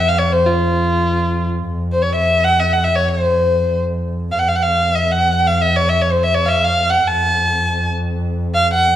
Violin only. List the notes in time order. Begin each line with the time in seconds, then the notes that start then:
0.08 F5
0.18 C#5
0.32 C5
0.46 F4
1.92 C5
2.02 C#5
2.15 E5
2.44 F#5
2.60 E5
2.73 F#5
2.84 E5
2.95 C#5
3.09 C#5
3.23 C5
4.32 F5
4.39 F#5
4.48 F5
4.56 F#5
4.63 F5
4.95 E5
5.11 F#5
5.47 F5
5.62 E5
5.76 C#5
5.89 E5
6.01 C#5
6.12 C5
6.23 E5
6.35 C#5
6.45 E5 F5
6.64 F5
6.89 F#5
7.07 A5
8.55 F5
8.74 F#5